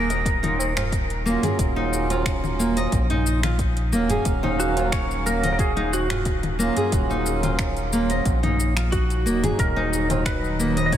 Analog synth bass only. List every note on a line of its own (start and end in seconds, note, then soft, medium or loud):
0.00 1.37 D#1 medium
1.59 2.87 D#1 medium
2.92 3.94 A#1 medium
3.92 4.19 D#1 medium
4.25 6.70 D#1 medium
6.92 8.20 D#1 loud
8.26 9.27 A#1 medium
9.26 9.52 D#1 medium
9.59 10.97 D#1 loud